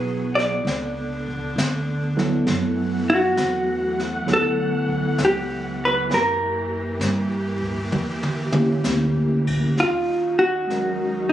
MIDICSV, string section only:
0, 0, Header, 1, 2, 480
1, 0, Start_track
1, 0, Key_signature, 2, "minor"
1, 0, Tempo, 906344
1, 1303, Time_signature, 4, 2, 24, 8
1, 3705, Tempo, 923077
1, 5957, End_track
2, 0, Start_track
2, 0, Title_t, "String section"
2, 0, Program_c, 0, 48
2, 0, Note_on_c, 0, 54, 70
2, 0, Note_on_c, 0, 59, 63
2, 0, Note_on_c, 0, 68, 76
2, 332, Note_off_c, 0, 54, 0
2, 334, Note_off_c, 0, 68, 0
2, 363, Note_on_c, 0, 50, 66
2, 373, Note_on_c, 0, 62, 77
2, 1279, Note_off_c, 0, 59, 0
2, 1302, Note_off_c, 0, 50, 0
2, 1307, Note_off_c, 0, 62, 0
2, 1309, Note_on_c, 0, 57, 67
2, 1310, Note_on_c, 0, 78, 76
2, 1313, Note_on_c, 0, 52, 68
2, 3208, Note_off_c, 0, 57, 0
2, 3209, Note_off_c, 0, 78, 0
2, 3231, Note_on_c, 0, 58, 67
2, 3239, Note_on_c, 0, 67, 77
2, 5135, Note_off_c, 0, 52, 0
2, 5136, Note_off_c, 0, 58, 0
2, 5140, Note_off_c, 0, 67, 0
2, 5173, Note_on_c, 0, 61, 58
2, 5177, Note_on_c, 0, 63, 75
2, 5181, Note_on_c, 0, 54, 65
2, 5957, Note_off_c, 0, 54, 0
2, 5957, Note_off_c, 0, 61, 0
2, 5957, Note_off_c, 0, 63, 0
2, 5957, End_track
0, 0, End_of_file